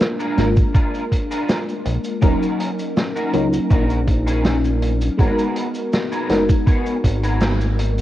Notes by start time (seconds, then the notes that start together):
Already playing: G#3 A#3 D4 F4 A#4
0.00 snare, closed hi-hat, cabasa
0.19 D4 F4 G#4 A#4, closed hi-hat, cabasa
0.37 G#1 G#3 A#3 D4 F4 A#4, snare, closed hi-hat
0.56 kick, closed hi-hat, cabasa
0.74 D4 F4 G#4 A#4, kick, closed hi-hat, cabasa
0.94 closed hi-hat, cabasa
1.11 kick, closed hi-hat
1.31 D4 F4 G#4 A#4, closed hi-hat, cabasa
1.49 snare, closed hi-hat, cabasa
1.68 closed hi-hat, cabasa
1.85 A#1, muted clean electric guitar stroke, closed hi-hat
2.04 closed hi-hat, cabasa
2.21 D#1 F#3 A#3 C#4 D#4 F#4 A#4, kick, closed hi-hat, cabasa
2.43 closed hi-hat, cabasa
2.60 closed hi-hat
2.79 closed hi-hat, cabasa
2.97 snare, closed hi-hat, cabasa
3.16 C#4 D#4 F#4 A#4, closed hi-hat, cabasa
3.33 C#2 F#3 A#3 C#4 D#4 A#4, closed hi-hat
3.53 closed hi-hat, cabasa
3.70 A#1 C#4 D#4 F#4 A#4, kick, closed hi-hat, cabasa
3.90 closed hi-hat, cabasa
4.07 kick, closed hi-hat
4.27 C#4 D#4 F#4 G#4, closed hi-hat, cabasa
4.45 snare, closed hi-hat, cabasa
4.64 closed hi-hat, cabasa
4.82 muted clean electric guitar stroke, closed hi-hat
5.01 closed hi-hat, cabasa
5.17 G#1 G#3 B3 D#4 F#4 G#4 A#4, kick, closed hi-hat, cabasa
5.38 closed hi-hat, cabasa
5.56 closed hi-hat
5.74 closed hi-hat, cabasa
5.93 snare, closed hi-hat, cabasa
6.12 B3 F#4 G#4 A#4, closed hi-hat, cabasa
6.29 F#1 G#3 B3 D#4 F#4 A#4, snare, closed hi-hat
6.49 kick, closed hi-hat, cabasa
6.66 B3 F#4 G#4 C#5, kick, closed hi-hat, cabasa
6.86 closed hi-hat, cabasa
7.04 G#1, kick, closed hi-hat
7.23 B3 F#4 G#4 A#4, closed hi-hat, cabasa
7.40 snare, closed hi-hat, cabasa
7.61 closed hi-hat, cabasa
7.78 muted clean electric guitar stroke, closed hi-hat
7.98 closed hi-hat, cabasa